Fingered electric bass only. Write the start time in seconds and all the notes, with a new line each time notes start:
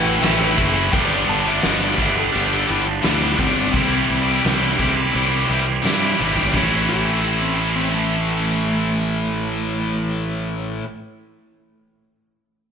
Already playing: A1
0.23 A1
0.59 F#1
0.94 G1
1.29 G1
1.65 G1
1.99 G1
2.36 G1
2.70 G1
3.05 D2
3.39 G1
3.74 C2
4.10 C2
4.45 C2
4.80 C2
5.15 C2
5.50 C2
5.84 G2
6.20 G#1
6.54 A1